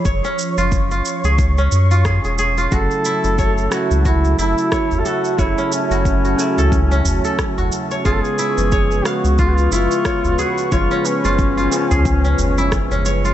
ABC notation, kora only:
X:1
M:4/4
L:1/16
Q:"Swing 16ths" 1/4=90
K:C#phr
V:1 name="Kora"
c C2 ^E2 E z G2 C z E G G G E | F2 E z c z F2 F z E z c z A z | c C2 F2 F z A2 C2 A2 F z c | ^E2 =E z c z ^e2 ^E z =E z c z G z |
c C2 ^E2 E z G2 C z =E z C c ^E |]